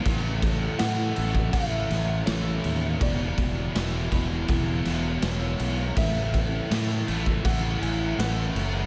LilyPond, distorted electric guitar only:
\new Staff \with { instrumentName = "Distorted electric guitar" } { \clef bass \time 4/4 \key a \major \tempo 4 = 81 <a, e a>4 <a, e a>8 <e a>8 <a, e a>4 <a, e a>4 | <e, b, e>4 <e, b, e>8 <b, e>8 <e, b, e>4 <e, b, e>4 | <a, e a>4 <a, e a>8 <e a>8 <a, e a>4 <a, e a>4 | }